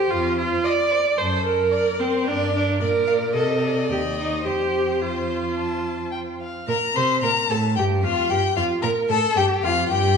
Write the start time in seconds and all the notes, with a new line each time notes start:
Already playing: G4 C5
0.10 F2 F4
0.38 F4
0.64 D5 D#5
0.91 C5
1.17 F#2 A4 C5
1.45 A#4
1.72 D5
1.99 C4 C5
2.25 G2 D4 A#4 D5
2.55 D4
2.80 A#2 A#4 D5
3.07 F5
3.33 C3 A4 D#5
3.62 D5
3.89 D#2 G4 D#5
4.19 D#4
4.45 F2 G4 C5
5.02 F4 C5
5.29 C5
5.58 A5
6.11 G5
6.41 F5
6.68 A#2 A#4 A#5
6.95 C3 C5 C6
7.22 A#2 A#4 A#5
7.48 A2 A4 A5
7.76 G2 G4 G5
8.03 F2 F4 F5
8.29 G2 G4 G5
8.56 F2 F4 F5
8.82 A#2 A#4 A#5
9.09 A2 A4 A5
9.35 G2 G4 G5
9.62 F2 F4 F5
9.89 G2 G4 G5